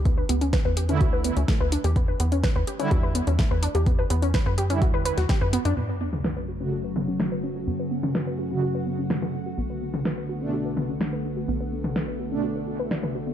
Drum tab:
CC |----------------|----------------|----------------|x---------------|
HH |x-xxx-xxx-xxx-xx|x-xxx-xxx-xxx-xx|x-xxx-xxx-xxx-xx|----------------|
SD |----o-------o---|----o-------o---|----o------oo---|----o-------o---|
T2 |----------------|----------------|----------------|---o------o-----|
BD |o---o---o---o---|o---o---o---o---|o---o---o---o---|----------------|

CC |----------------|----------------|----------------|
HH |----------------|----------------|----------------|
SD |----o-------o---|----o-------o---|----o-------o---|
T2 |---o---------o--|---o------o-----|---o---------o--|
BD |----------------|----------------|----------------|